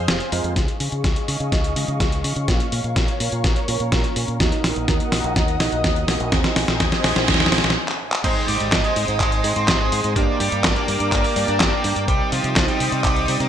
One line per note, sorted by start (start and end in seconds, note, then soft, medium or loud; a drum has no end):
0.00 0.54 G#4 medium
0.00 0.54 C5 medium
0.00 0.52 F5 medium
0.00 0.54 C6 medium
0.08 0.18 F1 medium
0.08 snare loud
0.08 closed hi-hat medium
0.20 closed hi-hat soft
0.32 0.42 F2 loud
0.32 0.53 G#3 medium
0.32 0.53 C4 medium
0.32 0.53 F4 medium
0.32 0.53 A#4 loud
0.32 open hi-hat loud
0.44 0.54 F2 loud
0.44 closed hi-hat soft
0.56 0.66 C#2 medium
0.56 1.73 G#3 medium
0.56 1.73 D#4 medium
0.56 1.73 F4 medium
0.56 2.46 G#4 medium
0.56 1.73 C#5 medium
0.56 2.46 D#5 medium
0.56 4.36 F5 medium
0.56 4.36 C#6 medium
0.56 kick loud
0.56 snare soft
0.56 closed hi-hat medium
0.68 closed hi-hat soft
0.80 0.90 C#3 medium
0.80 open hi-hat loud
0.92 1.02 C#3 medium
0.92 closed hi-hat soft
1.04 1.14 C#2 medium
1.04 kick loud
1.04 snare soft
1.04 closed hi-hat medium
1.16 closed hi-hat soft
1.28 1.38 C#3 medium
1.28 open hi-hat loud
1.40 1.50 C#3 loud
1.40 closed hi-hat soft
1.52 1.73 C#2 medium
1.52 kick loud
1.52 snare medium
1.52 closed hi-hat medium
1.64 closed hi-hat soft
1.76 1.86 C#3 medium
1.76 2.45 G#3 medium
1.76 2.45 D#4 medium
1.76 2.45 F4 medium
1.76 2.45 C#5 medium
1.76 open hi-hat loud
1.88 1.98 C#3 medium
1.88 closed hi-hat soft
2.00 2.21 C#2 medium
2.00 kick loud
2.00 snare medium
2.00 closed hi-hat medium
2.12 closed hi-hat soft
2.24 2.34 C#3 medium
2.24 open hi-hat loud
2.36 2.46 C#3 medium
2.36 closed hi-hat soft
2.48 2.58 A#1 loud
2.48 3.65 A#3 medium
2.48 3.65 C#4 medium
2.48 3.65 F4 medium
2.48 6.28 A#4 medium
2.48 3.65 C#5 medium
2.48 4.38 C#5 medium
2.48 kick loud
2.48 snare medium
2.48 closed hi-hat medium
2.60 closed hi-hat soft
2.72 2.82 A#2 medium
2.72 open hi-hat medium
2.84 2.94 A#2 medium
2.84 closed hi-hat soft
2.96 3.06 A#1 medium
2.96 kick loud
2.96 snare medium
2.96 closed hi-hat medium
3.08 closed hi-hat soft
3.20 3.30 A#2 medium
3.20 open hi-hat loud
3.32 3.42 A#2 medium
3.32 closed hi-hat soft
3.44 3.54 A#1 medium
3.44 kick loud
3.44 snare medium
3.44 closed hi-hat medium
3.56 closed hi-hat soft
3.68 3.78 A#2 loud
3.68 4.37 A#3 medium
3.68 4.37 C#4 medium
3.68 4.37 F4 medium
3.68 4.37 C#5 loud
3.68 open hi-hat loud
3.80 3.90 A#2 loud
3.80 closed hi-hat soft
3.92 4.02 A#1 medium
3.92 kick loud
3.92 snare medium
3.92 closed hi-hat medium
4.04 closed hi-hat soft
4.16 4.26 A#2 loud
4.16 open hi-hat loud
4.28 4.38 A#2 loud
4.28 closed hi-hat soft
4.40 4.50 D#2 medium
4.40 5.57 A#3 medium
4.40 5.57 D#4 medium
4.40 5.57 F#4 medium
4.40 7.73 D#5 medium
4.40 5.57 D#5 medium
4.40 6.30 F#5 medium
4.40 6.30 D#6 medium
4.40 kick loud
4.40 snare medium
4.40 closed hi-hat medium
4.52 closed hi-hat soft
4.64 4.74 A#1 medium
4.64 snare medium
4.64 open hi-hat loud
4.76 4.86 A#1 medium
4.76 closed hi-hat soft
4.88 4.98 D#2 medium
4.88 kick loud
4.88 snare medium
4.88 closed hi-hat medium
5.00 closed hi-hat soft
5.12 5.22 A#1 medium
5.12 snare medium
5.12 open hi-hat loud
5.24 5.34 A#1 loud
5.24 closed hi-hat soft
5.36 5.57 D#2 medium
5.36 kick loud
5.36 snare medium
5.36 closed hi-hat medium
5.48 closed hi-hat soft
5.60 5.70 A#1 medium
5.60 6.29 A#3 medium
5.60 6.29 D#4 medium
5.60 6.29 F#4 medium
5.60 6.29 D#5 medium
5.60 snare medium
5.60 open hi-hat loud
5.72 5.82 A#1 medium
5.72 closed hi-hat soft
5.84 6.05 D#2 medium
5.84 kick loud
5.84 snare medium
5.84 closed hi-hat medium
5.96 closed hi-hat soft
6.08 6.18 A#1 loud
6.08 snare medium
6.08 open hi-hat medium
6.20 6.30 A#1 loud
6.20 closed hi-hat soft
6.32 6.42 D#2 loud
6.32 7.49 C4 medium
6.32 7.49 D#4 medium
6.32 7.49 G#4 medium
6.32 7.75 C5 medium
6.32 7.49 D#5 medium
6.32 7.75 G#5 medium
6.32 7.75 D#6 medium
6.32 kick loud
6.32 snare medium
6.32 closed hi-hat medium
6.32 noise sweep medium
6.44 snare medium
6.44 closed hi-hat soft
6.56 6.66 A#1 medium
6.56 snare medium
6.56 open hi-hat loud
6.68 6.78 A#1 medium
6.68 snare medium
6.80 6.90 D#2 medium
6.80 kick loud
6.80 snare medium
6.80 closed hi-hat medium
6.92 snare medium
6.92 closed hi-hat soft
7.04 7.14 A#1 medium
7.04 snare loud
7.04 open hi-hat loud
7.16 7.26 A#1 loud
7.16 snare medium
7.16 closed hi-hat soft
7.28 7.49 D#2 medium
7.28 kick loud
7.28 snare loud
7.28 closed hi-hat medium
7.34 snare medium
7.40 snare medium
7.40 closed hi-hat soft
7.46 snare medium
7.52 7.62 A#1 loud
7.52 snare loud
7.52 open hi-hat loud
7.58 snare medium
7.64 7.74 A#1 medium
7.64 snare medium
7.64 closed hi-hat soft
7.70 snare medium
7.88 clap medium
8.12 clap medium
8.24 8.34 G#1 medium
8.24 8.45 G#3 medium
8.24 9.41 C4 medium
8.24 9.41 D#4 medium
8.24 8.45 G#4 medium
8.24 9.41 C5 medium
8.24 10.14 C5 medium
8.24 9.41 D#5 medium
8.24 10.14 D#5 medium
8.24 10.14 C6 medium
8.24 10.14 D#6 medium
8.24 kick loud
8.24 closed hi-hat medium
8.24 crash loud
8.24 impact medium
8.48 8.58 G#2 medium
8.48 8.80 G3 medium
8.48 8.80 G4 medium
8.48 open hi-hat loud
8.60 8.70 G#2 medium
8.60 closed hi-hat medium
8.72 8.82 G#1 medium
8.72 kick loud
8.72 snare loud
8.72 clap loud
8.72 closed hi-hat medium
8.84 9.16 G#3 medium
8.84 9.16 G#4 medium
8.84 closed hi-hat soft
8.96 9.06 G#2 medium
8.96 open hi-hat loud
9.08 9.19 G#2 loud
9.08 closed hi-hat medium
9.20 9.41 G#1 medium
9.20 9.52 G#3 medium
9.20 9.52 G#4 medium
9.20 kick loud
9.20 clap medium
9.20 closed hi-hat medium
9.32 closed hi-hat soft
9.44 9.54 G#2 medium
9.44 10.13 C4 medium
9.44 10.13 D#4 medium
9.44 10.13 G#4 medium
9.44 10.13 D#5 medium
9.44 open hi-hat loud
9.56 9.67 G#2 medium
9.56 9.77 C4 medium
9.56 9.77 C5 medium
9.56 closed hi-hat medium
9.68 9.89 G#1 medium
9.68 kick loud
9.68 snare loud
9.68 clap loud
9.68 closed hi-hat medium
9.80 10.12 G#3 medium
9.80 10.12 G#4 medium
9.92 10.02 G#2 loud
9.92 open hi-hat loud
10.04 10.14 G#2 loud
10.04 closed hi-hat medium
10.16 10.26 G1 loud
10.16 10.37 A#3 medium
10.16 11.33 A#3 medium
10.16 11.33 D4 medium
10.16 11.33 G4 medium
10.16 10.37 A#4 medium
10.16 12.06 A#4 medium
10.16 11.33 D5 loud
10.16 12.06 D5 medium
10.16 13.49 G5 medium
10.16 12.06 D6 medium
10.16 kick loud
10.16 closed hi-hat medium
10.40 10.50 G2 medium
10.40 10.72 G3 medium
10.40 10.72 G4 loud
10.40 open hi-hat loud
10.52 10.62 G2 medium
10.52 closed hi-hat medium
10.64 10.74 G1 medium
10.64 kick loud
10.64 snare loud
10.64 clap medium
10.64 closed hi-hat medium
10.76 11.08 A#3 medium
10.76 11.08 A#4 medium
10.76 closed hi-hat soft
10.88 10.98 G2 loud
10.88 open hi-hat loud
11.00 11.10 G2 loud
11.00 closed hi-hat medium
11.12 11.22 G1 medium
11.12 11.44 A#3 medium
11.12 11.44 A#4 medium
11.12 kick loud
11.12 clap medium
11.12 closed hi-hat medium
11.24 open hi-hat medium
11.36 11.46 G2 loud
11.36 12.05 A#3 medium
11.36 12.05 D4 medium
11.36 12.05 G4 medium
11.36 12.05 D5 loud
11.36 open hi-hat loud
11.48 11.58 G2 loud
11.48 11.69 D4 medium
11.48 11.69 D5 medium
11.48 closed hi-hat medium
11.60 11.70 G1 medium
11.60 kick loud
11.60 snare loud
11.60 clap medium
11.60 closed hi-hat medium
11.72 12.04 A#3 medium
11.72 12.04 A#4 medium
11.84 11.94 G2 loud
11.84 open hi-hat loud
11.96 12.06 G2 medium
11.96 closed hi-hat medium
12.08 12.18 C2 loud
12.08 13.25 G3 medium
12.08 12.29 G3 medium
12.08 13.25 C4 medium
12.08 13.25 D#4 medium
12.08 12.29 G4 loud
12.08 13.25 C5 medium
12.08 13.49 C5 medium
12.08 13.49 D#5 medium
12.08 13.49 D#6 medium
12.08 kick loud
12.08 closed hi-hat medium
12.32 12.42 C3 medium
12.32 12.64 F3 medium
12.32 12.64 F4 medium
12.32 open hi-hat loud
12.44 12.54 C3 medium
12.44 closed hi-hat medium
12.56 12.66 C2 medium
12.56 kick loud
12.56 snare loud
12.56 clap medium
12.56 closed hi-hat medium
12.68 13.00 G3 medium
12.68 13.00 G4 medium
12.68 closed hi-hat soft
12.80 12.90 C3 loud
12.80 open hi-hat loud
12.92 13.02 C3 loud
12.92 closed hi-hat medium
13.04 13.25 C2 medium
13.04 13.36 G3 medium
13.04 13.36 G4 medium
13.04 kick loud
13.04 clap medium
13.04 closed hi-hat medium
13.16 closed hi-hat soft
13.28 13.38 C3 medium
13.28 13.49 G3 medium
13.28 13.49 C4 medium
13.28 13.49 D#4 medium
13.28 13.49 C5 medium
13.28 open hi-hat loud
13.40 13.49 C3 medium
13.40 13.49 A#3 medium
13.40 13.49 A#4 medium
13.40 closed hi-hat soft